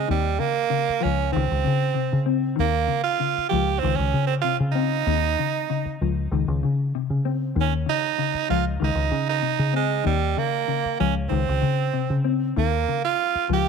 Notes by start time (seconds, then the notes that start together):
0.08 D#2 D#3 G3
0.39 C#3 A#3
0.70 C#3
0.89 muted fingered electric bass stroke
1.00 F3 C#4
1.05 C#2
1.32 C#2 D#3 C4
1.51 C#2
1.64 C#3
1.94 C3
2.13 C#3
2.26 C4
2.56 D#2 D#3 A#3
2.88 C#3
3.03 F4
3.20 C#3
3.38 muted fingered electric bass stroke
3.49 F3 G4
3.53 C#2
3.79 D#3 C4
3.84 C#2
3.96 C#2 C#4
4.14 C#3
4.27 C4
4.41 C3 F4
4.60 C#3
4.72 C4 D#4
5.07 D#2 D#3
5.39 C#3
5.70 C#3
5.86 muted fingered electric bass stroke
6.01 C#2 F3
6.32 C#2 D#3
6.48 C#2
6.63 C#3
6.95 C3
7.10 C#3
7.25 C4
7.56 D#2 D#3
7.61 C#4
7.86 C#3 D#4
8.18 C#3
8.34 muted fingered electric bass stroke
8.49 C#2 F3 F4
8.80 C#2 D#3
8.84 D#4
8.95 C#2
9.11 C#3
9.29 D#4
9.42 C3
9.59 C#3
9.73 G#3 C4
10.04 D#2 D#3 G3
10.37 C#3 A#3
10.68 C#3
10.85 muted fingered electric bass stroke
11.00 C#2 F3 C#4
11.29 C#2 D#3 C4
11.49 C#2
11.62 C#3
11.93 C3
12.10 C#3
12.24 C4
12.56 D#2 D#3 A#3
12.88 C#3
13.05 F4
13.35 muted fingered electric bass stroke
13.49 C#2 F3 G4